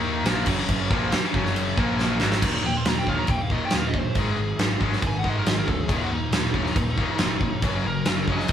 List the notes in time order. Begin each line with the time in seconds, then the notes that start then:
Already playing: D#2 D#3 A#3 D#4
0.25 A#1 A#2 F3 A#3, snare, crash
0.46 F#1 F#2 C#3 F#3, kick, crash
0.68 kick, crash
0.90 A#1 A#2 F3 A#3, kick
1.12 muted distorted electric guitar stroke, muted picked electric bass stroke, snare, crash
1.24 snare
1.33 F#1 F#2 C#3 F#3, kick
1.46 snare
1.56 crash
1.77 A#1 A#2 F3 A#3, kick
1.99 snare
2.20 G#1 G#2 D#3 G#3, snare
2.32 snare
2.42 D#1 D#2 A#2 D#3, kick, crash
2.64 D#1 D#2 A#2 G5
2.77 C6
2.85 D#1 D#2 A#2 A#5, snare, crash
2.96 G5, snare
3.07 D#1 D#2 A#2 D#3 F5, kick
3.19 A#5
3.27 D#1 D#2 A#2 G5, kick, crash
3.42 F5
3.50 D#2 A#2 D#3 D#5, kick
3.65 G5
3.70 D#1 D#2 A#2, snare, crash
3.76 F5
3.87 D#5
3.94 D#2 A#2, kick
3.98 C5
4.15 G#1 G#2 D#3 G#3, kick, crash
4.19 G#4
4.37 G#1 G#2 D#3
4.59 G#1 G#2 D#3, snare, crash
4.80 G#1 G#2 D#3 G#3, kick
4.93 snare
5.02 G#1 G#2 D#3, kick, crash
5.07 G#5
5.19 F#5
5.24 G#1 G#2 D#3 G#3, kick
5.30 D#5
5.38 A#4
5.46 G#1 G#2 D#3 D#5, snare, crash
5.57 A#4
5.68 D2 G#2 D#3 A4, kick
5.81 G#4
5.89 D#1 D#2 A#2 D#3 D#4, kick, crash
6.02 F#4
6.10 D#1 D#2 A#2 D#4
6.32 D#1 D#2 A#2 D#4, snare, crash
6.44 snare
6.54 D#1 D#2 A#2 D#3, kick
6.66 snare
6.76 D#1 D#2 A#2, kick, crash
6.98 D#2 A#2 D#3, kick
7.18 F1 D#2 A#2, snare, crash
7.41 D#2 A#2, kick
7.62 F#1 F#2 C#3 F#3, kick, crash
7.84 F#1 F#2 C#3 A#4
8.05 F#1 F#2 C#3, snare, crash
8.28 F#1 F#2 C#3 F#3, kick
8.32 D#5
8.40 snare
8.48 F#1, kick, crash